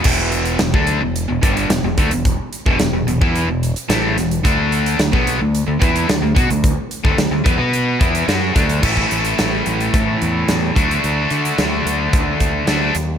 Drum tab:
CC |x---------------|----------------|----------------|----------------|
HH |--xxx-x-x-xxx-xx|x-x-x-x-x-xxx-xx|x-xxx-x-x-xxx-xx|x-x-x-x-x-xxx-xx|
SD |----o-------o---|----o-------o-o-|----o-------o---|----o-------o-o-|
BD |o----o----o---o-|o--o---o--------|o----o----o---o-|o--o--o---o---o-|

CC |x---------------|----------------|
HH |--xxx-xxx-x-x-xx|x-xxx-x-x-x-x-x-|
SD |----o-------o---|----o-------o-o-|
BD |oo------o-----o-|--------o-o-----|